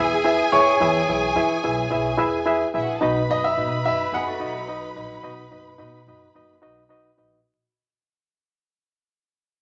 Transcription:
Already playing: upright bass E2, reed electric piano E4 G#4 B4 E5, violin section G#4 G#5, grand piano E5
0.24 reed electric piano E4 G#4 B4 E5
0.52 upright bass D#2, reed electric piano E4 G#4 B4 E5, grand piano C#5
0.80 upright bass E2, reed electric piano E3 E4 G#4 B4 E5
1.08 upright bass B1, reed electric piano E4 G#4 B4 E5
1.36 upright bass E3, reed electric piano E4 G#4 B4 E5
1.64 upright bass B1, reed electric piano E4 G#4 B4 E5
1.91 upright bass B1, reed electric piano E4 G#4 B4 E5
2.18 upright bass E2, reed electric piano E4 G#4 B4 E5
2.46 reed electric piano E4 G#4 B4 E5
2.74 upright bass A#1, reed electric piano E4 G#4 B4 E5, violin section E4 E5
2.82 violin section F#4 F#5
2.88 violin section G#4 G#5
2.95 violin section A4 A5
3.01 upright bass B1, reed electric piano B2 D#4 F#4 B4 D#5, violin section B4 B5
3.29 upright bass F#1, reed electric piano D#4 F#4 B4 D#5, grand piano D#5
3.44 grand piano E5
3.57 upright bass B2, reed electric piano D#4 F#4 B4 D#5
3.85 upright bass F#1, reed electric piano D#4 F#4 B4 D#5, grand piano E5
4.12 upright bass F#1, clean electric guitar B3 G#4, reed electric piano D#4 F#4 B4 D#5, grand piano F#5
4.27 clean electric guitar A3 F#4
4.40 upright bass B1, reed electric piano D#4 F#4 B4 D#5
4.55 clean electric guitar F#3 D#4
4.68 reed electric piano D#4 F#4 B4 D#5
4.96 upright bass A#1, reed electric piano D#4 F#4 B4 D#5
5.23 upright bass B1, reed electric piano B2 D#4 F#4 B4 D#5
5.51 upright bass F#1, reed electric piano D#4 F#4 B4 D#5
5.78 upright bass B2, reed electric piano D#4 F#4 B4 D#5
6.07 upright bass F#1, reed electric piano D#4 F#4 B4 D#5
6.35 upright bass F#1, reed electric piano D#4 F#4 B4 D#5
6.62 upright bass B1, reed electric piano D#4 F#4 B4 D#5
6.89 reed electric piano D#4 F#4 B4 D#5
7.17 upright bass A#1, reed electric piano D#4 F#4 B4 D#5

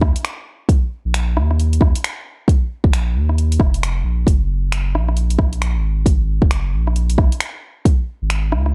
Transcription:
Already playing: sub bass D#2
0.01 kick, cross-stick
0.16 closed hi-hat
0.25 finger snap, closed hi-hat
0.69 kick, closed hi-hat
1.05 sub bass A#1
1.14 finger snap, closed hi-hat
1.37 sub bass D#2, cross-stick
1.51 cross-stick
1.60 closed hi-hat
1.73 closed hi-hat
1.81 kick, cross-stick
1.95 closed hi-hat
2.04 finger snap, closed hi-hat
2.48 kick, closed hi-hat
2.84 sub bass A#1, kick
2.93 finger snap, closed hi-hat
3.15 sub bass D#2
3.29 cross-stick
3.38 closed hi-hat
3.52 closed hi-hat
3.59 sub bass F1, kick, cross-stick
3.74 closed hi-hat
3.83 finger snap, closed hi-hat
4.05 sub bass A#1
4.27 sub bass F#1, kick, closed hi-hat
4.72 finger snap, closed hi-hat
4.94 sub bass A#1, cross-stick
5.09 cross-stick
5.17 closed hi-hat
5.30 closed hi-hat
5.39 kick, cross-stick
5.53 closed hi-hat
5.62 finger snap, closed hi-hat
5.75 sub bass G#1
6.06 kick, closed hi-hat
6.42 sub bass F#1, kick
6.51 finger snap, closed hi-hat
6.73 sub bass A#1
6.87 cross-stick
6.96 closed hi-hat
7.10 closed hi-hat
7.18 kick, cross-stick
7.32 closed hi-hat
7.40 finger snap, closed hi-hat
7.85 kick, closed hi-hat
8.22 sub bass G#1
8.30 finger snap, closed hi-hat
8.52 sub bass C#2, cross-stick
8.66 cross-stick

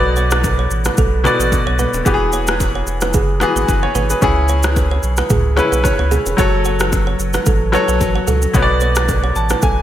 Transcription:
Already playing: sub bass B1, grand piano B2 B3 F#4 D5
0.16 kalimba C#5, shaker
0.31 kalimba B4, cross-stick, low bongo, shaker
0.44 kick, high bongo, shaker
0.59 kalimba C#5
0.71 sub bass A1, shaker
0.85 kalimba B4, cross-stick, low bongo, shaker
0.97 sub bass B1, kalimba A4, kick, low conga, shaker
1.24 grand piano B2 B3 F#4 D5, kalimba B4, cross-stick, low bongo, shaker
1.39 sub bass A1, kalimba B4, shaker
1.52 kick, high bongo, shaker
1.67 sub bass B1, kalimba C#5
1.79 kalimba B4, high bongo, low conga, shaker
1.94 sub bass D1, high bongo, shaker
2.05 sub bass E1, grand piano E3 B3 F#4 G4, kalimba G#4, kick, low conga, shaker
2.14 grand piano G#4
2.32 kalimba C#5, shaker
2.47 kalimba B4, cross-stick, low bongo, shaker
2.60 kick, high bongo, shaker
2.75 kalimba C#5
2.87 sub bass E1, shaker
3.01 kalimba B4, cross-stick, low bongo, shaker
3.13 sub bass F#1, kalimba G#4, kick, low conga, shaker
3.40 grand piano E3 B3 F#4 G#4, kalimba B4, cross-stick, low bongo, shaker
3.56 sub bass G#1, kalimba B4, shaker
3.68 sub bass F#1, grand piano G#4 B4, kick, high bongo, shaker
3.83 grand piano C#5, kalimba C#5
3.95 sub bass G#1, kalimba B4, high bongo, low conga, shaker
4.10 grand piano G#4 B4, high bongo, shaker
4.21 sub bass C#2, grand piano C#3 C#4 E4 G#4, kalimba G#4, kick, low conga, shaker
4.48 kalimba C#5, shaker
4.63 kalimba B4, cross-stick, low bongo, shaker
4.76 kick, high bongo, shaker
4.91 kalimba C#5
5.03 sub bass B1, shaker
5.17 kalimba B4, cross-stick, low bongo, shaker
5.30 sub bass C#2, kalimba G#4, kick, mid tom, low conga, shaker
5.56 grand piano C#3 C#4 E4 B4, kalimba B4, cross-stick, low bongo, shaker
5.72 sub bass B1, kalimba B4, shaker
5.84 grand piano C#5, kick, cross-stick, high bongo, shaker
5.99 sub bass C#2, kalimba C#5
6.11 kalimba G#4, high bongo, low conga, shaker
6.26 sub bass E1, high bongo, shaker
6.37 sub bass F#1, grand piano F#3 F#4 A4 C#5, kalimba A4, kick, low conga, shaker
6.65 kalimba C#5, shaker
6.79 kalimba B4, cross-stick, low bongo, shaker
6.92 kick, high bongo, shaker
7.07 kalimba C#5
7.19 sub bass F#1, shaker
7.33 kalimba B4, cross-stick, low bongo, shaker
7.46 sub bass A1, kalimba A4, kick, low conga, shaker
7.72 grand piano F#3 F#4 A4 C#5, kalimba B4, cross-stick, low bongo, shaker
7.88 sub bass B1, kalimba B4, shaker
8.01 sub bass A1, kick, high bongo, shaker
8.15 kalimba C#5
8.27 sub bass C#2, kalimba A4, high bongo, low conga, shaker
8.42 high bongo, shaker
8.53 sub bass B1, grand piano B2 B3 F#4 C#5, kalimba B4, kick, low conga, shaker
8.62 grand piano D5
8.80 kalimba C#5, shaker
8.95 kalimba B4, cross-stick, low bongo, shaker
9.09 kick, high bongo, shaker
9.24 kalimba C#5
9.36 sub bass A1, grand piano A5, shaker
9.49 kalimba B4, cross-stick, low bongo, shaker
9.62 sub bass B1, kalimba A4, grand piano G#5, kick, low conga, shaker

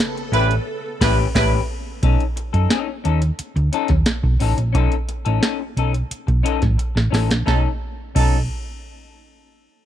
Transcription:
Already playing: string machine C#3 B3 A4
0.00 muted clean electric guitar stroke, snare, closed hi-hat
0.15 muted clean electric guitar stroke, closed hi-hat
0.32 fingered electric bass A1, horn section G3 E4 B4, clean electric guitar C#4 G4 B4, closed hi-hat
0.48 muted clean electric guitar stroke, closed hi-hat
1.01 fingered electric bass A1, horn section G3 E4 B4, clean electric guitar C#4 G4 B4, kick, snare, crash
1.35 fingered electric bass A1, horn section G3 E4 B4, clean electric guitar C#4 G4 B4, kick, snare, crash
2.03 fingered electric bass B1, clean electric guitar C#4 D#4 A4, kick, closed hi-hat
2.20 closed hi-hat
2.36 muted clean electric guitar stroke, closed hi-hat
2.53 fingered electric bass F#2, clean electric guitar C#4 D#4 A4, closed hi-hat
2.69 clean electric guitar C#4 D#4 A4, snare, closed hi-hat
2.87 muted clean electric guitar stroke
3.04 fingered electric bass D#2, clean electric guitar C#4 D#4 A4, closed hi-hat
3.21 muted clean electric guitar stroke, closed hi-hat
3.39 muted fingered electric bass stroke, closed hi-hat
3.56 fingered electric bass D2, muted clean electric guitar stroke, closed hi-hat
3.73 clean electric guitar C#4 D#4 A4, closed hi-hat
3.88 fingered electric bass D#2, muted clean electric guitar stroke, kick, snare, closed hi-hat
4.06 muted clean electric guitar stroke, snare, closed hi-hat
4.23 fingered electric bass B1, muted clean electric guitar stroke, kick
4.40 fingered electric bass A1, clean electric guitar C#4 D#4 A4, open hi-hat
4.57 fingered electric bass A#1, muted clean electric guitar stroke, closed hi-hat
4.73 fingered electric bass B1, clean electric guitar C#4 D#4 A4, kick, closed hi-hat
4.92 closed hi-hat
5.08 muted clean electric guitar stroke, closed hi-hat
5.25 fingered electric bass A1, clean electric guitar C#4 D#4 A4, closed hi-hat
5.41 clean electric guitar C#4 D#4 A4, snare, closed hi-hat
5.60 muted clean electric guitar stroke
5.77 fingered electric bass B1, clean electric guitar C#4 D#4 A4, closed hi-hat
5.93 muted clean electric guitar stroke, closed hi-hat
6.11 muted fingered electric bass stroke, closed hi-hat
6.27 fingered electric bass B1, muted clean electric guitar stroke, kick, closed hi-hat
6.43 clean electric guitar C#4 D#4 A4, closed hi-hat
6.61 fingered electric bass A1, muted clean electric guitar stroke, kick, snare, closed hi-hat
6.77 muted clean electric guitar stroke, closed hi-hat
6.95 fingered electric bass A1, muted clean electric guitar stroke, snare
7.11 fingered electric bass A1, clean electric guitar C#4 D#4 A4, open hi-hat
7.15 snare
7.28 fingered electric bass A#1, muted clean electric guitar stroke, snare, closed hi-hat
7.46 fingered electric bass B1, horn section F#3 D#4 A4, clean electric guitar C#4 D#4 A4, kick, snare
8.15 fingered electric bass B1, horn section F#3 D#4 A4, clean electric guitar C#4 D#4 A4, kick, crash

